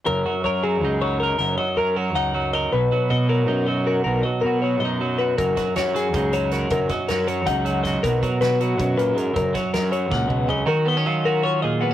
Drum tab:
HH |-------|-------|-------|-------|
SD |-------|-------|-------|-------|
FT |-------|-------|-------|-------|
BD |-------|-------|-------|-------|

HH |xxxxxxx|xxxxxxx|xxxxxxx|xxxx---|
SD |-ooo--o|-oo---o|--o----|-oo-o--|
FT |-------|-------|-------|------o|
BD |oo--o--|oo--o-o|oo--o--|oo--oo-|

HH |-------|
SD |-------|
FT |-------|
BD |-------|